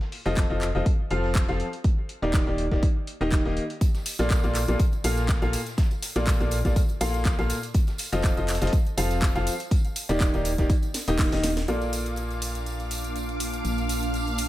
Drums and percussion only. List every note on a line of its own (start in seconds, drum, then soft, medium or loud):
0.01 snare soft
0.12 open hi-hat medium
0.26 snare soft
0.37 kick loud
0.37 snare loud
0.37 clap loud
0.37 closed hi-hat medium
0.61 snare medium
0.61 clap medium
0.61 closed hi-hat medium
0.86 kick loud
0.86 closed hi-hat medium
1.10 closed hi-hat medium
1.24 snare soft
1.35 kick loud
1.35 snare loud
1.35 clap loud
1.35 closed hi-hat medium
1.49 snare medium
1.60 closed hi-hat medium
1.73 closed hi-hat soft
1.84 kick loud
1.84 closed hi-hat medium
2.09 closed hi-hat medium
2.34 kick loud
2.34 snare loud
2.34 clap loud
2.34 closed hi-hat medium
2.58 closed hi-hat medium
2.71 kick medium
2.71 snare soft
2.83 kick loud
2.83 closed hi-hat medium
3.07 closed hi-hat medium
3.32 kick loud
3.32 snare loud
3.32 clap loud
3.32 closed hi-hat medium
3.45 snare soft
3.57 closed hi-hat medium
3.70 closed hi-hat soft
3.81 kick loud
3.81 closed hi-hat medium
3.81 tambourine medium
3.95 snare soft
3.95 closed hi-hat soft
3.95 tambourine soft
4.06 open hi-hat loud
4.06 open hi-hat medium
4.06 tambourine medium
4.19 snare soft
4.19 closed hi-hat medium
4.19 tambourine soft
4.30 kick loud
4.30 snare loud
4.30 clap loud
4.30 closed hi-hat medium
4.30 tambourine soft
4.44 closed hi-hat soft
4.44 tambourine soft
4.55 snare medium
4.55 clap medium
4.55 closed hi-hat medium
4.55 open hi-hat loud
4.55 tambourine medium
4.68 closed hi-hat soft
4.68 tambourine soft
4.80 kick loud
4.80 closed hi-hat medium
4.80 closed hi-hat soft
4.80 tambourine medium
4.93 closed hi-hat soft
4.93 tambourine soft
5.04 closed hi-hat medium
5.04 open hi-hat loud
5.04 tambourine medium
5.18 snare soft
5.18 closed hi-hat soft
5.18 tambourine soft
5.29 kick loud
5.29 snare loud
5.29 clap loud
5.29 closed hi-hat soft
5.29 closed hi-hat medium
5.29 tambourine soft
5.42 snare medium
5.42 closed hi-hat soft
5.42 tambourine soft
5.53 open hi-hat loud
5.53 open hi-hat medium
5.53 tambourine medium
5.66 snare soft
5.66 closed hi-hat medium
5.66 tambourine soft
5.78 kick loud
5.78 snare loud
5.78 closed hi-hat medium
5.78 tambourine medium
5.91 closed hi-hat soft
5.91 tambourine soft
6.02 snare medium
6.02 closed hi-hat medium
6.02 open hi-hat loud
6.02 tambourine medium
6.16 closed hi-hat medium
6.16 tambourine soft
6.27 kick loud
6.27 snare loud
6.27 clap loud
6.27 closed hi-hat medium
6.27 tambourine soft
6.40 closed hi-hat soft
6.40 tambourine soft
6.51 closed hi-hat medium
6.51 open hi-hat loud
6.51 tambourine medium
6.65 kick medium
6.65 snare soft
6.65 closed hi-hat medium
6.65 tambourine soft
6.76 kick loud
6.76 closed hi-hat medium
6.76 tambourine medium
6.89 closed hi-hat soft
6.89 tambourine soft
7.01 closed hi-hat medium
7.01 open hi-hat loud
7.01 tambourine medium
7.14 closed hi-hat soft
7.14 tambourine soft
7.25 kick loud
7.25 snare loud
7.25 clap loud
7.25 closed hi-hat medium
7.25 tambourine soft
7.39 snare soft
7.39 closed hi-hat soft
7.39 tambourine soft
7.50 closed hi-hat medium
7.50 open hi-hat loud
7.50 tambourine medium
7.63 closed hi-hat soft
7.63 closed hi-hat medium
7.63 tambourine soft
7.74 kick loud
7.74 closed hi-hat medium
7.74 tambourine soft
7.87 snare soft
7.87 closed hi-hat soft
7.87 tambourine soft
7.98 open hi-hat medium
7.98 open hi-hat loud
7.98 tambourine medium
8.12 snare soft
8.12 closed hi-hat medium
8.12 tambourine soft
8.24 kick loud
8.24 snare loud
8.24 clap loud
8.24 closed hi-hat medium
8.24 tambourine soft
8.37 closed hi-hat soft
8.37 tambourine soft
8.48 snare medium
8.48 clap medium
8.48 closed hi-hat medium
8.48 open hi-hat loud
8.48 tambourine medium
8.55 snare medium
8.55 closed hi-hat medium
8.62 snare medium
8.62 closed hi-hat medium
8.62 tambourine soft
8.67 snare medium
8.67 closed hi-hat medium
8.73 kick loud
8.73 closed hi-hat medium
8.73 tambourine soft
8.87 closed hi-hat soft
8.87 tambourine soft
8.98 closed hi-hat medium
8.98 open hi-hat loud
8.98 tambourine medium
9.10 snare soft
9.10 closed hi-hat medium
9.10 tambourine soft
9.22 kick loud
9.22 snare loud
9.22 clap loud
9.22 closed hi-hat medium
9.22 tambourine medium
9.36 snare medium
9.36 closed hi-hat soft
9.36 tambourine soft
9.47 closed hi-hat medium
9.47 open hi-hat loud
9.47 tambourine medium
9.60 closed hi-hat medium
9.60 closed hi-hat soft
9.60 tambourine soft
9.71 kick loud
9.71 closed hi-hat medium
9.71 tambourine soft
9.85 closed hi-hat soft
9.85 tambourine soft
9.96 closed hi-hat medium
9.96 open hi-hat loud
9.96 tambourine medium
10.09 closed hi-hat medium
10.09 tambourine soft
10.20 kick loud
10.20 snare loud
10.20 clap loud
10.20 closed hi-hat medium
10.20 tambourine medium
10.34 closed hi-hat soft
10.34 tambourine soft
10.45 closed hi-hat medium
10.45 open hi-hat loud
10.45 tambourine medium
10.58 kick medium
10.58 snare soft
10.58 closed hi-hat medium
10.58 tambourine soft
10.70 kick loud
10.70 closed hi-hat medium
10.70 tambourine medium
10.82 closed hi-hat soft
10.82 tambourine soft
10.94 snare medium
10.94 open hi-hat loud
10.94 open hi-hat medium
10.94 tambourine loud
11.08 closed hi-hat medium
11.08 tambourine soft
11.19 kick loud
11.19 snare soft
11.19 snare medium
11.19 clap loud
11.19 open hi-hat medium
11.19 tambourine medium
11.32 snare medium
11.32 closed hi-hat soft
11.32 open hi-hat medium
11.32 tambourine soft
11.43 snare loud
11.43 closed hi-hat medium
11.43 open hi-hat loud
11.43 tambourine medium
11.43 high conga medium
11.57 snare medium
11.57 snare soft
11.57 closed hi-hat medium
11.57 tambourine soft
11.68 closed hi-hat medium
11.68 tambourine soft
11.81 closed hi-hat soft
11.81 tambourine soft
11.93 open hi-hat loud
11.93 tambourine medium
12.06 closed hi-hat soft
12.06 tambourine soft
12.16 closed hi-hat medium
12.16 tambourine soft
12.31 closed hi-hat soft
12.31 tambourine soft
12.42 open hi-hat loud
12.42 tambourine medium
12.55 closed hi-hat soft
12.55 tambourine soft
12.66 closed hi-hat medium
12.66 tambourine medium
12.80 closed hi-hat soft
12.80 tambourine soft
12.91 open hi-hat loud
12.91 tambourine medium
13.04 closed hi-hat medium
13.04 tambourine soft
13.16 closed hi-hat medium
13.16 tambourine soft
13.29 closed hi-hat soft
13.29 tambourine soft
13.40 open hi-hat loud
13.40 tambourine medium
13.54 closed hi-hat medium
13.54 tambourine soft
13.65 closed hi-hat soft
13.65 tambourine soft
13.78 closed hi-hat soft
13.78 tambourine soft
13.89 open hi-hat loud
13.89 tambourine medium
14.03 closed hi-hat soft
14.03 tambourine soft
14.14 closed hi-hat soft
14.14 tambourine medium
14.27 closed hi-hat soft
14.27 tambourine soft
14.38 open hi-hat loud
14.38 tambourine medium